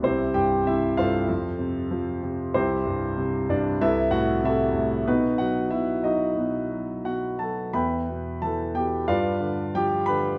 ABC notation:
X:1
M:4/4
L:1/16
Q:1/4=93
K:Bphr
V:1 name="Grand piano"
[CEGc]2 [Gg]2 [Ee]2 [=FAc=f]8 z2 | [CEGc]6 [Dd]2 [EABe]2 [Ff]2 [EAe]3 z | [B,^DFB]2 [Ff]2 [Ee]2 [DF^d]6 [Ff]2 [Aa]2 | [Begb]4 [Aa]2 [Gg]2 [=FBd=f]4 [Gg]2 [Bb]2 |]
V:2 name="Grand piano" clef=bass
C,,2 G,,2 C,2 G,,2 =F,,2 C,2 =F,2 C,2 | C,,2 G,,2 C,2 G,,2 C,,2 A,,2 C,2 A,,2 | B,,2 F,2 B,,2 F,2 B,,2 F,2 B,,2 F,2 | E,,2 B,,2 E,2 B,,2 G,,2 D,2 =F,2 D,2 |]